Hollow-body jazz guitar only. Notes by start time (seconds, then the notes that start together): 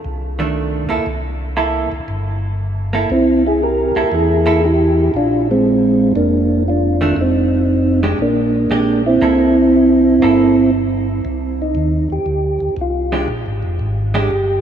0.39 D#3 A3 D4
0.89 A#3 E4 A4
1.57 A#3 E4 A4
2.93 A#3 E4 A4
3.96 A#3 E4 A4
4.46 A#3 E4 A4
7.01 D#3 A3 D4
8.03 G#3 D4 G4
8.71 G#3 D4 G4
9.22 A#3 E4 A4
10.22 A#3 E4 A4
13.12 G#3 D4 G4
14.14 G#3 D4 G4